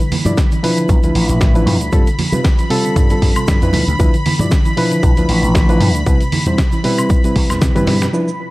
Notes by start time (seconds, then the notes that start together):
Already playing: B5
0.00 D3
0.12 E3, open hi-hat, low conga
0.25 G2 B2 F3 D4 E4 D5, closed hi-hat, high conga, shaker
0.37 D3, kick, snare, closed hi-hat, shaker
0.52 E3, closed hi-hat, shaker
0.63 B2 F3 D4 E4 B4, open hi-hat
0.77 D3, closed hi-hat, shaker
0.89 B1 B2, kick, closed hi-hat, high conga, shaker
1.03 D2 D3 F3 D4 E4 B4, closed hi-hat, shaker
1.15 A1 E3, open hi-hat
1.29 A1 B2, closed hi-hat, shaker
1.41 D3, kick, snare, closed hi-hat, shaker
1.55 E3 F3 D4 E4 B4, closed hi-hat, shaker
1.66 G2 B2, open hi-hat, high conga
1.81 D2 D3, closed hi-hat, shaker
1.92 G2 C3 G3 C4 F4 A4, kick, closed hi-hat, shaker
2.07 D3, closed hi-hat, shaker
2.19 F3, open hi-hat, low conga
2.32 C3 G3 C4 F4 B4, closed hi-hat, high conga, shaker
2.44 D3, kick, snare, closed hi-hat, shaker
2.59 F3, closed hi-hat, shaker
2.70 C3 G3 C4 F4 A4, open hi-hat
2.84 D3, closed hi-hat, shaker
2.96 G2 C3, kick, closed hi-hat, high conga, shaker
3.10 D3 G3 C4 F4 A4, closed hi-hat, shaker
3.22 G2 F3, kick, open hi-hat
3.36 C3, muted slap bass stroke, closed hi-hat, high woodblock, shaker
3.48 G2 D3, kick, snare, closed hi-hat, shaker
3.62 F2 F3 D4 E4 B4, closed hi-hat, shaker
3.73 D2 B2, open hi-hat, high conga
3.87 D2 D3, closed hi-hat, shaker
3.99 D2 F3 D4 E4 B4, kick, closed hi-hat, shaker
4.14 D3, closed hi-hat, shaker
4.26 E3, open hi-hat, low conga
4.39 G2 B2 F3 D4 E4 D5, closed hi-hat, high conga, shaker
4.51 D3, kick, snare, closed hi-hat, shaker
4.65 E3, closed hi-hat, shaker
4.77 B2 F3 D4 E4 B4, open hi-hat
4.91 D3, closed hi-hat, shaker
5.03 B1 B2, kick, closed hi-hat, high conga, shaker
5.17 D2 D3 F3 D4 E4 B4, closed hi-hat, shaker
5.29 A1 E3, open hi-hat
5.43 A1 B2, closed hi-hat, shaker
5.55 D3, kick, snare, closed hi-hat, shaker
5.69 E3 F3 D4 E4 B4, closed hi-hat, shaker
5.80 G2 B2, open hi-hat, high conga
5.94 D2 D3, closed hi-hat, shaker
6.06 C2 B2 G3 C4 E4 B4, kick, closed hi-hat, shaker
6.21 C3, closed hi-hat, shaker
6.32 E3, open hi-hat, low conga
6.46 E2 B2 G3 C4 E4 C5, closed hi-hat, high conga, shaker
6.58 C3, kick, snare, closed hi-hat, shaker
6.72 E3, closed hi-hat, shaker
6.84 B2 G3 C4 E4 B4, open hi-hat
6.98 C3, closed hi-hat, high woodblock, shaker
7.09 B2, kick, closed hi-hat, high conga, shaker
7.24 C3 G3 C4 E4 B4, closed hi-hat, shaker
7.36 C2 E3, kick, open hi-hat
7.50 E2 B2, snare, closed hi-hat, high woodblock, shaker
7.61 C3, kick, snare, closed hi-hat, high tom, shaker
7.75 G2 E3 G3 C4 E4 B4, closed hi-hat, high tom, shaker
7.87 B2, snare, open hi-hat, high conga
8.02 C3, snare, closed hi-hat, shaker
8.13 F3 D4 E4 B4 B5, cabasa
8.28 cabasa